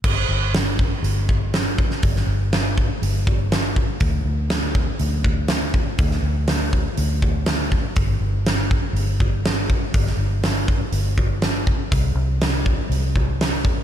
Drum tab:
CC |x---------------|----------------|----------------|----------------|
HH |----o---o---o---|o---o---o---o---|o---o---o---o---|o---o---o---o---|
SD |----o-------o--o|-o--o-------o---|----o-------o---|-o--o-------o---|
BD |o-----o---o---o-|o-----o---o---o-|o-----o---o---o-|o-----o---o---o-|

CC |----------------|----------------|----------------|
HH |o---o---o---o---|o---o---o---o---|o---o---o---o---|
SD |----o-------o---|-o--o-------o---|----o-------o---|
BD |o-----o---o---o-|o-----o---o---o-|o-----o---o---o-|